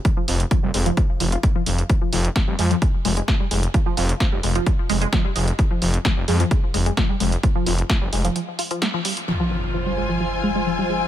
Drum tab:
HH |x-oxx-oxx-oxx-ox|x-oxx-oxx-oxx-ox|x-oxx-oxx-oxx-ox|x-oxx-oxx-oxx-ox|
SD |----------------|----o-------o---|----o-------o---|----o-------o---|
BD |o---o---o---o---|o---o---o---o---|o---o---o---o---|o---o---o---o---|

HH |x-oxx-oxx-oxx-ox|--xxx-----------|
SD |----o-------o---|----------------|
BD |o---o-----------|----------------|